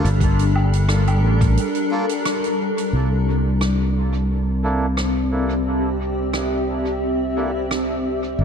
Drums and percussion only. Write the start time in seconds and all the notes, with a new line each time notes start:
0.05 closed hi-hat
0.21 kick, closed hi-hat
0.39 closed hi-hat
0.56 low woodblock
0.73 closed hi-hat
0.89 cross-stick, closed hi-hat
1.07 closed hi-hat, low woodblock
1.41 kick, closed hi-hat
1.57 closed hi-hat
1.75 closed hi-hat
2.09 closed hi-hat
2.25 cross-stick, closed hi-hat
2.44 closed hi-hat
2.78 closed hi-hat
3.61 cross-stick
4.97 cross-stick
6.34 cross-stick
7.71 cross-stick